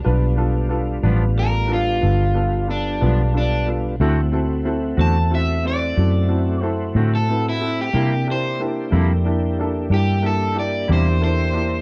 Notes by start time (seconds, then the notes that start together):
0.04 B1 G3 B3 D4 F4 B4
0.36 B3 D4 F4 A4
0.69 B3 D4 F4 A4
1.03 A1 G2 F3 B3 D4 F4 B4
1.37 B3 D4 F4 A4 A#4
1.67 B3 D4 F4 A4
1.73 F4
2.01 G1 B3 D4 F4 A4
2.34 B3 D4 F4 A4
2.67 B3 D4 F4 A4
3.00 B1 G2 F3 B3 D4 F4 A4
3.33 B3 D4 F4 A4
3.38 D4
3.66 B3 D4 F4 A4
4.00 D2 D3 A3 C4 E4 F#4 A4
4.32 C4 E4 F#4 A4
4.65 C4 E4 F#4 A4
4.97 E2 D3 A3 C4 E4 F#4 A4 A5
5.30 C4 E4 F#4 A4
5.35 E5
5.64 C4 E4 F#4 C5 D5
5.97 F#2 C4 E4 F#4 A4
6.28 C4 E4 F#4 A4
6.61 C4 E4 F#4 A4 C5
6.95 A2 D3 A3 C4 E4 F#4 A4
7.15 A4
7.29 C4 E4 F#4 B4
7.49 E4
7.59 C4 E4 F#4 A4
7.81 G4
7.93 C3 G3 A#3 D4 E4 G4
8.27 A#3 D4 E4 G4
8.32 C5
8.60 A#3 D4 E4 G4
8.90 F2 C3 G3 A#3 D4 E4 A4
9.25 A#3 D4 E4 G4
9.59 A#3 D4 E4 A4
9.90 G2 A#3 D4 E4 G4
10.22 A#3 D4 E4 G4
10.26 A4
10.55 A#3 D4 E4 G4
10.59 D5
10.88 E2 C3 G3 A#3 D4 E4 G4
10.93 C5
11.21 A#3 D4 E4 A4 C5
11.53 A#3 D4 E4 G4